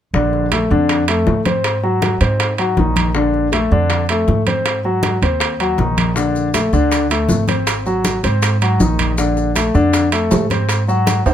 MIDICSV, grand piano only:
0, 0, Header, 1, 2, 480
1, 0, Start_track
1, 0, Tempo, 376884
1, 182, Time_signature, 4, 2, 24, 8
1, 14441, End_track
2, 0, Start_track
2, 0, Title_t, "Grand piano"
2, 0, Program_c, 0, 0
2, 186, Note_on_c, 0, 62, 67
2, 187, Note_on_c, 0, 50, 68
2, 577, Note_off_c, 0, 50, 0
2, 577, Note_off_c, 0, 62, 0
2, 667, Note_on_c, 0, 57, 60
2, 670, Note_on_c, 0, 69, 64
2, 861, Note_off_c, 0, 57, 0
2, 863, Note_off_c, 0, 69, 0
2, 905, Note_on_c, 0, 50, 72
2, 908, Note_on_c, 0, 62, 72
2, 1296, Note_off_c, 0, 50, 0
2, 1298, Note_off_c, 0, 62, 0
2, 1381, Note_on_c, 0, 57, 66
2, 1386, Note_on_c, 0, 69, 65
2, 1773, Note_off_c, 0, 57, 0
2, 1776, Note_off_c, 0, 69, 0
2, 1861, Note_on_c, 0, 60, 60
2, 1863, Note_on_c, 0, 72, 65
2, 2253, Note_off_c, 0, 60, 0
2, 2254, Note_off_c, 0, 72, 0
2, 2336, Note_on_c, 0, 54, 69
2, 2342, Note_on_c, 0, 66, 65
2, 2729, Note_off_c, 0, 54, 0
2, 2733, Note_off_c, 0, 66, 0
2, 2815, Note_on_c, 0, 60, 68
2, 2822, Note_on_c, 0, 72, 65
2, 3209, Note_off_c, 0, 60, 0
2, 3213, Note_off_c, 0, 72, 0
2, 3295, Note_on_c, 0, 54, 66
2, 3300, Note_on_c, 0, 66, 63
2, 3492, Note_off_c, 0, 54, 0
2, 3495, Note_off_c, 0, 66, 0
2, 3538, Note_on_c, 0, 51, 59
2, 3543, Note_on_c, 0, 63, 58
2, 3930, Note_off_c, 0, 51, 0
2, 3933, Note_off_c, 0, 63, 0
2, 4020, Note_on_c, 0, 50, 68
2, 4024, Note_on_c, 0, 62, 67
2, 4411, Note_off_c, 0, 50, 0
2, 4413, Note_off_c, 0, 62, 0
2, 4498, Note_on_c, 0, 57, 66
2, 4504, Note_on_c, 0, 69, 63
2, 4693, Note_off_c, 0, 57, 0
2, 4696, Note_off_c, 0, 69, 0
2, 4738, Note_on_c, 0, 50, 77
2, 4739, Note_on_c, 0, 62, 76
2, 5130, Note_off_c, 0, 50, 0
2, 5130, Note_off_c, 0, 62, 0
2, 5223, Note_on_c, 0, 57, 63
2, 5225, Note_on_c, 0, 69, 68
2, 5613, Note_off_c, 0, 57, 0
2, 5614, Note_off_c, 0, 69, 0
2, 5698, Note_on_c, 0, 60, 66
2, 5700, Note_on_c, 0, 72, 66
2, 6089, Note_off_c, 0, 60, 0
2, 6090, Note_off_c, 0, 72, 0
2, 6176, Note_on_c, 0, 54, 66
2, 6179, Note_on_c, 0, 66, 68
2, 6568, Note_off_c, 0, 54, 0
2, 6570, Note_off_c, 0, 66, 0
2, 6658, Note_on_c, 0, 60, 63
2, 6661, Note_on_c, 0, 72, 67
2, 7049, Note_off_c, 0, 60, 0
2, 7051, Note_off_c, 0, 72, 0
2, 7135, Note_on_c, 0, 54, 68
2, 7140, Note_on_c, 0, 66, 64
2, 7331, Note_off_c, 0, 54, 0
2, 7334, Note_off_c, 0, 66, 0
2, 7378, Note_on_c, 0, 51, 57
2, 7378, Note_on_c, 0, 63, 59
2, 7769, Note_off_c, 0, 51, 0
2, 7769, Note_off_c, 0, 63, 0
2, 7853, Note_on_c, 0, 50, 66
2, 7854, Note_on_c, 0, 62, 68
2, 8246, Note_off_c, 0, 50, 0
2, 8247, Note_off_c, 0, 62, 0
2, 8328, Note_on_c, 0, 57, 64
2, 8335, Note_on_c, 0, 69, 63
2, 8526, Note_off_c, 0, 57, 0
2, 8531, Note_off_c, 0, 69, 0
2, 8574, Note_on_c, 0, 50, 78
2, 8575, Note_on_c, 0, 62, 77
2, 8967, Note_off_c, 0, 50, 0
2, 8967, Note_off_c, 0, 62, 0
2, 9054, Note_on_c, 0, 57, 68
2, 9057, Note_on_c, 0, 69, 67
2, 9447, Note_off_c, 0, 57, 0
2, 9449, Note_off_c, 0, 69, 0
2, 9531, Note_on_c, 0, 60, 65
2, 9533, Note_on_c, 0, 72, 65
2, 9925, Note_off_c, 0, 60, 0
2, 9927, Note_off_c, 0, 72, 0
2, 10015, Note_on_c, 0, 54, 69
2, 10018, Note_on_c, 0, 66, 71
2, 10408, Note_off_c, 0, 54, 0
2, 10410, Note_off_c, 0, 66, 0
2, 10497, Note_on_c, 0, 60, 70
2, 10499, Note_on_c, 0, 72, 68
2, 10889, Note_off_c, 0, 60, 0
2, 10891, Note_off_c, 0, 72, 0
2, 10976, Note_on_c, 0, 54, 67
2, 10980, Note_on_c, 0, 66, 69
2, 11172, Note_off_c, 0, 54, 0
2, 11174, Note_off_c, 0, 66, 0
2, 11216, Note_on_c, 0, 51, 60
2, 11218, Note_on_c, 0, 63, 64
2, 11609, Note_off_c, 0, 51, 0
2, 11610, Note_off_c, 0, 63, 0
2, 11693, Note_on_c, 0, 50, 66
2, 11698, Note_on_c, 0, 62, 67
2, 12088, Note_off_c, 0, 50, 0
2, 12091, Note_off_c, 0, 62, 0
2, 12176, Note_on_c, 0, 57, 63
2, 12183, Note_on_c, 0, 69, 63
2, 12373, Note_off_c, 0, 57, 0
2, 12377, Note_off_c, 0, 69, 0
2, 12412, Note_on_c, 0, 50, 76
2, 12419, Note_on_c, 0, 62, 81
2, 12808, Note_off_c, 0, 50, 0
2, 12812, Note_off_c, 0, 62, 0
2, 12894, Note_on_c, 0, 57, 65
2, 12899, Note_on_c, 0, 69, 70
2, 13290, Note_off_c, 0, 57, 0
2, 13293, Note_off_c, 0, 69, 0
2, 13385, Note_on_c, 0, 60, 66
2, 13387, Note_on_c, 0, 72, 65
2, 13776, Note_off_c, 0, 60, 0
2, 13778, Note_off_c, 0, 72, 0
2, 13861, Note_on_c, 0, 54, 73
2, 13864, Note_on_c, 0, 66, 73
2, 14255, Note_off_c, 0, 54, 0
2, 14257, Note_off_c, 0, 66, 0
2, 14344, Note_on_c, 0, 60, 68
2, 14349, Note_on_c, 0, 72, 66
2, 14441, Note_off_c, 0, 60, 0
2, 14441, Note_off_c, 0, 72, 0
2, 14441, End_track
0, 0, End_of_file